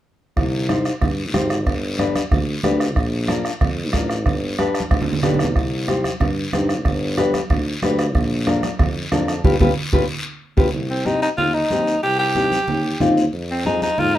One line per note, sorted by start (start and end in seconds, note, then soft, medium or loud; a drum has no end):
0.37 0.89 C2 loud
0.37 bombo low medium
0.37 bombo rim medium
0.37 low conga medium
0.37 long guiro medium
0.69 0.92 D#4 medium
0.69 0.92 G4 medium
0.69 0.92 C5 medium
0.69 bombo rim medium
0.69 high conga medium
0.69 short guiro medium
0.85 bombo rim medium
0.85 short guiro medium
1.01 1.36 G2 medium
1.01 bombo low medium
1.01 bombo rim medium
1.01 low conga medium
1.01 long guiro medium
1.33 1.68 G#1 loud
1.33 1.57 D#4 medium
1.33 1.57 G4 medium
1.33 1.57 C5 medium
1.33 bombo rim medium
1.33 high conga medium
1.33 low conga medium
1.33 short guiro medium
1.50 bombo rim medium
1.50 short guiro medium
1.66 2.18 G1 loud
1.66 bombo low medium
1.66 bombo rim medium
1.66 low conga medium
1.66 long guiro medium
1.98 2.22 D4 medium
1.98 2.22 G4 medium
1.98 2.22 B4 medium
1.98 bombo rim medium
1.98 high conga medium
1.98 short guiro medium
2.15 bombo rim medium
2.15 high conga medium
2.15 short guiro medium
2.31 2.57 D2 loud
2.31 bombo low medium
2.31 bombo rim medium
2.31 low conga medium
2.31 long guiro medium
2.63 2.98 D2 loud
2.63 2.86 D4 medium
2.63 2.86 G4 medium
2.63 2.87 B4 medium
2.63 bombo rim medium
2.63 high conga medium
2.63 low conga medium
2.63 short guiro medium
2.80 bombo rim medium
2.80 short guiro medium
2.96 3.48 A#1 loud
2.96 bombo low medium
2.96 bombo rim medium
2.96 long guiro medium
3.28 3.51 D4 medium
3.28 3.51 F4 medium
3.28 3.51 A#4 loud
3.28 bombo rim medium
3.28 high conga medium
3.28 short guiro medium
3.45 bombo rim medium
3.45 short guiro medium
3.61 3.95 F2 medium
3.61 bombo low medium
3.61 bombo rim medium
3.61 low conga medium
3.61 long guiro medium
3.93 4.27 A1 loud
3.93 4.16 D4 medium
3.93 4.16 F4 medium
3.93 4.16 A#4 medium
3.93 bombo low medium
3.93 bombo rim medium
3.93 high conga medium
3.93 short guiro medium
4.10 bombo rim medium
4.10 short guiro medium
4.26 4.56 G1 loud
4.26 bombo low medium
4.26 bombo rim medium
4.26 low conga medium
4.26 long guiro medium
4.58 4.81 D4 medium
4.58 4.81 G4 medium
4.58 4.81 B4 medium
4.58 bombo rim medium
4.58 high conga medium
4.58 short guiro medium
4.75 bombo rim medium
4.75 short guiro medium
4.80 high conga medium
4.91 5.25 D2 medium
4.91 bombo low medium
4.91 bombo rim medium
4.91 high conga medium
4.91 long guiro medium
5.02 low conga medium
5.13 low conga medium
5.23 5.57 B1 loud
5.23 5.46 D4 medium
5.23 5.46 G4 medium
5.23 5.46 B4 medium
5.23 bombo rim medium
5.23 low conga medium
5.23 short guiro medium
5.34 low conga medium
5.39 bombo rim medium
5.39 short guiro medium
5.45 low conga loud
5.56 6.08 C2 loud
5.56 bombo low medium
5.56 bombo rim medium
5.56 long guiro medium
5.88 6.11 D#4 medium
5.88 6.11 G4 medium
5.88 6.11 C5 medium
5.88 bombo rim medium
5.88 high conga medium
5.88 short guiro medium
6.04 bombo rim medium
6.04 high conga medium
6.04 short guiro medium
6.20 6.46 G2 medium
6.20 bombo low medium
6.20 bombo rim medium
6.20 low conga medium
6.20 long guiro medium
6.52 6.87 G2 medium
6.52 6.75 D#4 medium
6.52 6.75 G4 medium
6.52 6.76 C5 medium
6.52 bombo rim medium
6.52 high conga medium
6.52 low conga medium
6.52 short guiro medium
6.69 bombo rim medium
6.69 short guiro medium
6.85 7.37 G1 loud
6.85 bombo low medium
6.85 bombo rim medium
6.85 low conga medium
6.85 long guiro medium
7.17 7.40 D4 medium
7.17 7.40 G4 medium
7.17 7.41 B4 medium
7.17 bombo rim medium
7.17 high conga medium
7.17 short guiro medium
7.34 bombo rim medium
7.34 high conga medium
7.34 short guiro medium
7.50 7.76 D2 medium
7.50 bombo low medium
7.50 bombo rim medium
7.50 low conga medium
7.50 long guiro medium
7.82 8.16 D2 loud
7.82 8.05 D4 medium
7.82 8.05 G4 medium
7.82 8.06 B4 medium
7.82 bombo rim medium
7.82 high conga medium
7.82 short guiro medium
7.99 bombo rim medium
7.99 short guiro medium
8.15 8.67 A#1 loud
8.15 bombo low medium
8.15 bombo rim medium
8.15 low conga medium
8.15 long guiro medium
8.47 8.70 D4 medium
8.47 8.70 F4 medium
8.47 8.70 A#4 loud
8.47 bombo rim medium
8.47 high conga medium
8.47 short guiro medium
8.63 bombo rim medium
8.63 high conga medium
8.63 short guiro medium
8.79 9.05 F2 medium
8.79 bombo low medium
8.79 bombo rim medium
8.79 low conga medium
8.79 long guiro medium
9.12 9.44 F2 loud
9.12 9.34 D4 medium
9.12 9.35 F4 medium
9.12 9.35 A#4 medium
9.12 bombo rim medium
9.12 high conga medium
9.12 low conga medium
9.12 short guiro medium
9.28 bombo rim medium
9.28 short guiro medium
9.44 9.56 G1 medium
9.44 9.55 F4 medium
9.44 9.55 G4 medium
9.44 9.55 B4 medium
9.44 bombo low loud
9.44 low conga loud
9.44 long guiro medium
9.60 9.72 G1 medium
9.60 9.71 F4 loud
9.60 9.71 G4 medium
9.60 9.71 B4 medium
9.60 bombo low medium
9.60 low conga loud
9.60 long guiro loud
9.93 10.05 G1 medium
9.93 10.04 F4 medium
9.93 10.03 G4 medium
9.93 10.03 B4 medium
9.93 bombo low medium
9.93 low conga loud
9.93 long guiro loud
10.57 10.70 G1 loud
10.57 10.68 F4 medium
10.57 10.68 G4 medium
10.57 10.68 B4 medium
10.57 bombo low loud
10.57 low conga medium
10.57 long guiro medium
10.73 11.26 C2 medium
10.73 low conga medium
10.73 long guiro medium
10.90 11.08 C4 medium
11.05 11.29 C4 medium
11.05 11.29 D#4 medium
11.05 11.22 D#4 medium
11.05 11.29 G4 medium
11.05 high conga medium
11.05 short guiro medium
11.22 11.30 D#4 medium
11.22 short guiro medium
11.38 11.65 D#2 medium
11.38 11.56 F4 medium
11.38 low conga medium
11.38 long guiro medium
11.54 12.02 D#4 medium
11.70 11.97 D#2 medium
11.70 11.94 C4 medium
11.70 11.94 D#4 medium
11.70 11.94 G4 medium
11.70 high conga medium
11.70 short guiro medium
11.87 short guiro medium
12.03 12.56 C2 medium
12.03 12.18 G4 loud
12.03 long guiro medium
12.19 13.13 G4 loud
12.35 12.59 C4 medium
12.35 12.59 D#4 medium
12.35 12.59 G4 medium
12.35 high conga medium
12.35 short guiro medium
12.51 high conga medium
12.51 short guiro medium
12.68 12.94 D#2 medium
12.68 low conga medium
12.68 long guiro medium
13.00 13.27 D#2 medium
13.00 13.23 C4 medium
13.00 13.24 D#4 medium
13.00 13.24 F4 medium
13.00 high conga medium
13.00 low conga medium
13.00 short guiro medium
13.17 short guiro medium
13.33 13.85 F2 medium
13.33 long guiro medium
13.51 13.66 C4 medium
13.65 13.88 C4 medium
13.65 13.81 D#4 loud
13.65 13.89 F4 medium
13.65 13.89 G#4 medium
13.65 high conga medium
13.65 short guiro medium
13.82 14.00 D#4 medium
13.82 high conga medium
13.82 short guiro medium
13.97 14.18 G#2 medium
13.97 14.17 F4 loud
13.97 low conga medium
13.97 long guiro medium
14.15 14.18 D#4 medium